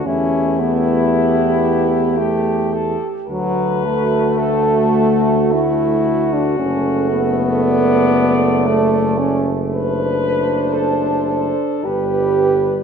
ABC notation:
X:1
M:3/4
L:1/16
Q:1/4=57
K:D
V:1 name="Cornet"
E8 G2 A2 | B4 A4 F4- | F4 d6- d z | B4 A2 A2 B4 |]
V:2 name="French horn section"
G12 | F12 | A12 | =c8 B4 |]
V:3 name="Euphonium"
C2 B,6 A,3 z | F,2 A,6 E3 D | C2 B,6 A,2 C z | D8 G4 |]
V:4 name="Trombone"
A,8- A,3 z | A,12 | A,12- | A,6- A, z G,4 |]
V:5 name="Tuba" clef=bass
E,,8- E,,3 z | D,,12 | F,,,12- | F,,,6- F,,, z G,,,4 |]